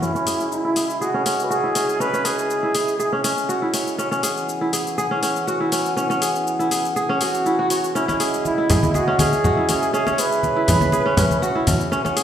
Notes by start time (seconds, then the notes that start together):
Already playing: E4 F#4 G#4
0.02 C#4 E4 G#4 D#5 E5, shaker
0.15 C#4, shaker
0.27 G#4, open hi-hat, shaker
0.40 shaker
0.51 E4, shaker
0.65 E4
0.76 G#4, open hi-hat, shaker
0.90 shaker
1.01 F#4 G#4, shaker
1.14 C#4
1.26 C#4, open hi-hat, shaker
1.40 shaker
1.44 B4
1.50 F#4 G#4, shaker
1.64 E4
1.75 C#4, open hi-hat, shaker
1.89 shaker
2.00 C#4 B4, shaker
2.13 C#4, shaker
2.25 G#4, open hi-hat, shaker
2.39 shaker
2.50 shaker
2.63 E4
2.75 G#4, open hi-hat, shaker
2.88 shaker
2.99 G#4, shaker
3.12 C#4
3.24 C#4, open hi-hat, shaker
3.38 shaker
3.49 F#4, shaker
3.62 E4
3.74 C#4, open hi-hat, shaker
3.87 shaker
3.98 C#4 E4 B4 F#5 G#5, shaker
4.11 C#4, shaker
4.23 G#4, open hi-hat, shaker
4.37 shaker
4.49 shaker
4.61 E4
4.73 G#4, open hi-hat, shaker
4.87 shaker
4.98 G#4, shaker
5.11 C#4
5.23 C#4, open hi-hat, shaker
5.36 shaker
5.47 F#4, shaker
5.60 E4
5.72 C#4, open hi-hat, shaker
5.86 shaker
5.97 C#4, shaker
6.10 C#4, shaker
6.22 G#4, open hi-hat, shaker
6.36 shaker
6.47 shaker
6.59 E4, shaker
6.71 G#4, open hi-hat, shaker
6.85 shaker
6.96 G#4, shaker
7.09 C#4
7.21 F#4 G#4, open hi-hat, shaker
7.34 shaker
7.46 E4, shaker
7.59 F#4
7.70 C#5, open hi-hat, shaker
7.84 shaker
7.95 C#4 E4 G#4 D#5 E5, shaker
8.08 C#4, muted conga, shaker
8.20 G#4, open hi-hat, shaker
8.34 shaker
8.45 E4, muted conga, shaker
8.58 E4
8.70 G#4, open hi-hat, low conga, shaker
8.83 high conga, shaker
8.94 F#4 G#4, muted conga, high conga, shaker
9.08 C#4
9.19 C#4 G#4, open hi-hat, high conga, shaker
9.33 muted conga, shaker
9.44 F#4, low conga, shaker
9.57 E4
9.69 C#4, open hi-hat, muted conga, shaker
9.83 shaker
9.94 C#4 G#4 C#5, shaker
10.07 C#4, muted conga, shaker
10.12 C#5
10.18 G#4 B4, open hi-hat, shaker
10.32 shaker
10.43 muted conga, high conga, shaker
10.56 E4
10.68 G#4, open hi-hat, low conga, shaker
10.81 high conga, shaker
10.92 G#4, muted conga, shaker
11.06 C#4
11.17 C#4, open hi-hat, low conga, shaker
11.30 muted conga, high conga, shaker
11.42 F#4, shaker
11.55 E4
11.67 C#4, open hi-hat, muted conga, high conga, low conga, shaker
11.81 shaker
11.92 C#4 E4 B4 F#5 G#5, shaker
12.05 C#4, muted conga, shaker
12.16 G#4, open hi-hat, shaker